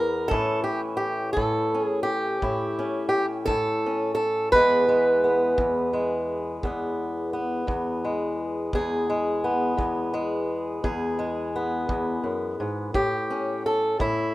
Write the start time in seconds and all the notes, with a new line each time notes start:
Already playing: E2 B3 E4 A#4
0.28 A2 E3 C#4 A4, kick
0.33 E4
0.64 G4
0.97 G4
1.33 A2 A4, kick
1.74 C#4
1.84 G#4
2.03 G4
2.42 A2 E4, kick
2.79 C#4
3.09 G4
3.46 A2 A4, kick
3.86 C#4
4.15 A4
4.52 E2 E3 G#3 B4, kick
4.56 B3
4.89 G#3
5.24 B3
5.58 E2, kick
5.93 G#3
6.63 E2 B3, kick
7.33 B3
7.67 E2, kick
8.05 G#3
8.73 E2 G#4, kick
9.10 G#3
9.44 B3
9.77 E2, kick
10.14 G#3
10.84 E2 G#4, kick
11.19 G#3
11.56 B3
11.89 E2, kick
12.24 F#2
12.60 G#2
12.94 A2 G4, kick
13.30 C#4
13.66 A4
13.99 A2 E4, kick